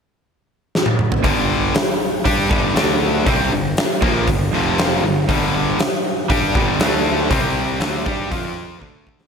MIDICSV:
0, 0, Header, 1, 7, 480
1, 0, Start_track
1, 0, Tempo, 505051
1, 1179, Time_signature, 4, 2, 24, 8
1, 8810, End_track
2, 0, Start_track
2, 0, Title_t, "Distorted electric guitar"
2, 0, Program_c, 0, 30
2, 1178, Note_on_c, 0, 43, 93
2, 1184, Note_on_c, 0, 50, 104
2, 1186, Note_on_c, 0, 55, 114
2, 1642, Note_off_c, 0, 43, 0
2, 1655, Note_off_c, 0, 50, 0
2, 1656, Note_off_c, 0, 55, 0
2, 2137, Note_on_c, 0, 55, 86
2, 2140, Note_on_c, 0, 62, 95
2, 2146, Note_on_c, 0, 67, 96
2, 2372, Note_off_c, 0, 55, 0
2, 2373, Note_off_c, 0, 62, 0
2, 2376, Note_off_c, 0, 67, 0
2, 2376, Note_on_c, 0, 43, 88
2, 2382, Note_on_c, 0, 50, 106
2, 2387, Note_on_c, 0, 55, 98
2, 2607, Note_off_c, 0, 50, 0
2, 2612, Note_off_c, 0, 43, 0
2, 2617, Note_off_c, 0, 55, 0
2, 2618, Note_on_c, 0, 50, 89
2, 2623, Note_on_c, 0, 57, 84
2, 2627, Note_on_c, 0, 62, 95
2, 3093, Note_off_c, 0, 50, 0
2, 3096, Note_off_c, 0, 57, 0
2, 3098, Note_off_c, 0, 62, 0
2, 3104, Note_on_c, 0, 48, 97
2, 3106, Note_on_c, 0, 55, 105
2, 3111, Note_on_c, 0, 60, 105
2, 3336, Note_off_c, 0, 48, 0
2, 3337, Note_off_c, 0, 55, 0
2, 3340, Note_off_c, 0, 60, 0
2, 3342, Note_on_c, 0, 43, 73
2, 3348, Note_on_c, 0, 50, 76
2, 3535, Note_off_c, 0, 43, 0
2, 3538, Note_off_c, 0, 50, 0
2, 3824, Note_on_c, 0, 46, 92
2, 3829, Note_on_c, 0, 58, 99
2, 3830, Note_on_c, 0, 53, 99
2, 4057, Note_off_c, 0, 46, 0
2, 4060, Note_off_c, 0, 53, 0
2, 4060, Note_off_c, 0, 58, 0
2, 4069, Note_on_c, 0, 43, 59
2, 4076, Note_on_c, 0, 50, 76
2, 4259, Note_off_c, 0, 43, 0
2, 4263, Note_off_c, 0, 50, 0
2, 4313, Note_on_c, 0, 41, 93
2, 4316, Note_on_c, 0, 48, 100
2, 4323, Note_on_c, 0, 53, 104
2, 4783, Note_off_c, 0, 41, 0
2, 4784, Note_off_c, 0, 48, 0
2, 4788, Note_off_c, 0, 53, 0
2, 4792, Note_on_c, 0, 50, 73
2, 4793, Note_on_c, 0, 43, 62
2, 4982, Note_off_c, 0, 43, 0
2, 4982, Note_off_c, 0, 50, 0
2, 5031, Note_on_c, 0, 43, 102
2, 5032, Note_on_c, 0, 50, 108
2, 5034, Note_on_c, 0, 55, 108
2, 5493, Note_off_c, 0, 43, 0
2, 5503, Note_off_c, 0, 50, 0
2, 5503, Note_off_c, 0, 55, 0
2, 5980, Note_on_c, 0, 55, 101
2, 5989, Note_on_c, 0, 62, 99
2, 5991, Note_on_c, 0, 67, 101
2, 6216, Note_off_c, 0, 55, 0
2, 6221, Note_off_c, 0, 62, 0
2, 6222, Note_off_c, 0, 67, 0
2, 6226, Note_on_c, 0, 43, 91
2, 6228, Note_on_c, 0, 50, 90
2, 6231, Note_on_c, 0, 55, 98
2, 6451, Note_off_c, 0, 50, 0
2, 6459, Note_off_c, 0, 43, 0
2, 6462, Note_off_c, 0, 55, 0
2, 6463, Note_on_c, 0, 50, 92
2, 6470, Note_on_c, 0, 62, 102
2, 6471, Note_on_c, 0, 57, 97
2, 6934, Note_off_c, 0, 50, 0
2, 6938, Note_on_c, 0, 48, 94
2, 6941, Note_off_c, 0, 57, 0
2, 6941, Note_off_c, 0, 62, 0
2, 6949, Note_on_c, 0, 55, 93
2, 6951, Note_on_c, 0, 60, 106
2, 7414, Note_off_c, 0, 48, 0
2, 7419, Note_off_c, 0, 55, 0
2, 7420, Note_off_c, 0, 60, 0
2, 7422, Note_on_c, 0, 50, 93
2, 7423, Note_on_c, 0, 57, 106
2, 7430, Note_on_c, 0, 62, 106
2, 7646, Note_off_c, 0, 62, 0
2, 7654, Note_off_c, 0, 57, 0
2, 7655, Note_off_c, 0, 50, 0
2, 7658, Note_on_c, 0, 55, 89
2, 7658, Note_on_c, 0, 62, 107
2, 7664, Note_on_c, 0, 67, 97
2, 7893, Note_off_c, 0, 55, 0
2, 7893, Note_off_c, 0, 62, 0
2, 7896, Note_off_c, 0, 67, 0
2, 7904, Note_on_c, 0, 60, 92
2, 7905, Note_on_c, 0, 53, 86
2, 7912, Note_on_c, 0, 65, 98
2, 8378, Note_off_c, 0, 60, 0
2, 8378, Note_on_c, 0, 57, 88
2, 8380, Note_off_c, 0, 53, 0
2, 8380, Note_on_c, 0, 50, 91
2, 8389, Note_off_c, 0, 65, 0
2, 8389, Note_on_c, 0, 62, 94
2, 8810, Note_off_c, 0, 50, 0
2, 8810, Note_off_c, 0, 57, 0
2, 8810, Note_off_c, 0, 62, 0
2, 8810, End_track
3, 0, Start_track
3, 0, Title_t, "Picked electric bass"
3, 0, Program_c, 1, 34
3, 1175, Note_on_c, 1, 31, 88
3, 1624, Note_off_c, 1, 31, 0
3, 2142, Note_on_c, 1, 43, 94
3, 2365, Note_off_c, 1, 43, 0
3, 2381, Note_on_c, 1, 31, 98
3, 2605, Note_off_c, 1, 31, 0
3, 2622, Note_on_c, 1, 38, 94
3, 3069, Note_off_c, 1, 38, 0
3, 3105, Note_on_c, 1, 36, 85
3, 3328, Note_off_c, 1, 36, 0
3, 3346, Note_on_c, 1, 31, 78
3, 3568, Note_off_c, 1, 31, 0
3, 3818, Note_on_c, 1, 34, 90
3, 4044, Note_off_c, 1, 34, 0
3, 4063, Note_on_c, 1, 31, 86
3, 4288, Note_off_c, 1, 31, 0
3, 4306, Note_on_c, 1, 29, 101
3, 4753, Note_off_c, 1, 29, 0
3, 4779, Note_on_c, 1, 31, 76
3, 5006, Note_off_c, 1, 31, 0
3, 5023, Note_on_c, 1, 31, 98
3, 5472, Note_off_c, 1, 31, 0
3, 5984, Note_on_c, 1, 43, 88
3, 6209, Note_off_c, 1, 43, 0
3, 6227, Note_on_c, 1, 31, 106
3, 6450, Note_off_c, 1, 31, 0
3, 6464, Note_on_c, 1, 38, 96
3, 6911, Note_off_c, 1, 38, 0
3, 6938, Note_on_c, 1, 36, 94
3, 7387, Note_off_c, 1, 36, 0
3, 7417, Note_on_c, 1, 38, 91
3, 7643, Note_off_c, 1, 38, 0
3, 7658, Note_on_c, 1, 43, 97
3, 7883, Note_off_c, 1, 43, 0
3, 7904, Note_on_c, 1, 41, 86
3, 8348, Note_off_c, 1, 41, 0
3, 8376, Note_on_c, 1, 38, 93
3, 8810, Note_off_c, 1, 38, 0
3, 8810, End_track
4, 0, Start_track
4, 0, Title_t, "Muted distorted electric guitar strokes"
4, 1654, Note_on_c, 9, 29, 65
4, 1749, Note_off_c, 9, 29, 0
4, 5505, Note_on_c, 9, 29, 61
4, 5600, Note_off_c, 9, 29, 0
4, 8810, End_track
5, 0, Start_track
5, 0, Title_t, "Muted overdriven electric guitar strokes"
5, 1651, Note_on_c, 9, 29, 60
5, 1746, Note_off_c, 9, 29, 0
5, 5514, Note_on_c, 9, 29, 54
5, 5609, Note_off_c, 9, 29, 0
5, 8810, End_track
6, 0, Start_track
6, 0, Title_t, "Muted picked electric bass strokes"
6, 1661, Note_on_c, 9, 29, 39
6, 1756, Note_off_c, 9, 29, 0
6, 5497, Note_on_c, 9, 29, 43
6, 5592, Note_off_c, 9, 29, 0
6, 8810, End_track
7, 0, Start_track
7, 0, Title_t, "Drums"
7, 714, Note_on_c, 9, 38, 70
7, 809, Note_off_c, 9, 38, 0
7, 817, Note_on_c, 9, 48, 82
7, 912, Note_off_c, 9, 48, 0
7, 941, Note_on_c, 9, 47, 79
7, 1036, Note_off_c, 9, 47, 0
7, 1062, Note_on_c, 9, 43, 95
7, 1157, Note_off_c, 9, 43, 0
7, 1176, Note_on_c, 9, 46, 52
7, 1181, Note_on_c, 9, 36, 91
7, 1271, Note_off_c, 9, 46, 0
7, 1276, Note_off_c, 9, 36, 0
7, 1659, Note_on_c, 9, 46, 72
7, 1671, Note_on_c, 9, 38, 112
7, 1754, Note_off_c, 9, 46, 0
7, 1766, Note_off_c, 9, 38, 0
7, 2144, Note_on_c, 9, 36, 96
7, 2147, Note_on_c, 9, 46, 60
7, 2239, Note_off_c, 9, 36, 0
7, 2242, Note_off_c, 9, 46, 0
7, 2384, Note_on_c, 9, 36, 111
7, 2479, Note_off_c, 9, 36, 0
7, 2623, Note_on_c, 9, 46, 66
7, 2635, Note_on_c, 9, 38, 105
7, 2718, Note_off_c, 9, 46, 0
7, 2730, Note_off_c, 9, 38, 0
7, 3102, Note_on_c, 9, 46, 55
7, 3103, Note_on_c, 9, 36, 100
7, 3197, Note_off_c, 9, 46, 0
7, 3198, Note_off_c, 9, 36, 0
7, 3583, Note_on_c, 9, 46, 65
7, 3594, Note_on_c, 9, 38, 124
7, 3678, Note_off_c, 9, 46, 0
7, 3689, Note_off_c, 9, 38, 0
7, 3822, Note_on_c, 9, 36, 111
7, 3917, Note_off_c, 9, 36, 0
7, 4061, Note_on_c, 9, 46, 58
7, 4064, Note_on_c, 9, 36, 94
7, 4156, Note_off_c, 9, 46, 0
7, 4160, Note_off_c, 9, 36, 0
7, 4546, Note_on_c, 9, 46, 61
7, 4558, Note_on_c, 9, 38, 117
7, 4641, Note_off_c, 9, 46, 0
7, 4653, Note_off_c, 9, 38, 0
7, 5025, Note_on_c, 9, 46, 57
7, 5026, Note_on_c, 9, 36, 95
7, 5120, Note_off_c, 9, 46, 0
7, 5121, Note_off_c, 9, 36, 0
7, 5506, Note_on_c, 9, 46, 66
7, 5517, Note_on_c, 9, 38, 114
7, 5601, Note_off_c, 9, 46, 0
7, 5612, Note_off_c, 9, 38, 0
7, 5986, Note_on_c, 9, 36, 107
7, 5987, Note_on_c, 9, 46, 59
7, 6082, Note_off_c, 9, 36, 0
7, 6082, Note_off_c, 9, 46, 0
7, 6227, Note_on_c, 9, 36, 114
7, 6322, Note_off_c, 9, 36, 0
7, 6459, Note_on_c, 9, 46, 65
7, 6471, Note_on_c, 9, 38, 121
7, 6555, Note_off_c, 9, 46, 0
7, 6566, Note_off_c, 9, 38, 0
7, 6943, Note_on_c, 9, 46, 61
7, 6945, Note_on_c, 9, 36, 101
7, 7038, Note_off_c, 9, 46, 0
7, 7040, Note_off_c, 9, 36, 0
7, 7420, Note_on_c, 9, 46, 68
7, 7431, Note_on_c, 9, 38, 126
7, 7515, Note_off_c, 9, 46, 0
7, 7526, Note_off_c, 9, 38, 0
7, 7663, Note_on_c, 9, 36, 108
7, 7758, Note_off_c, 9, 36, 0
7, 7904, Note_on_c, 9, 36, 101
7, 7906, Note_on_c, 9, 46, 57
7, 7999, Note_off_c, 9, 36, 0
7, 8001, Note_off_c, 9, 46, 0
7, 8378, Note_on_c, 9, 36, 66
7, 8473, Note_off_c, 9, 36, 0
7, 8618, Note_on_c, 9, 36, 85
7, 8713, Note_off_c, 9, 36, 0
7, 8751, Note_on_c, 9, 38, 88
7, 8810, Note_off_c, 9, 38, 0
7, 8810, End_track
0, 0, End_of_file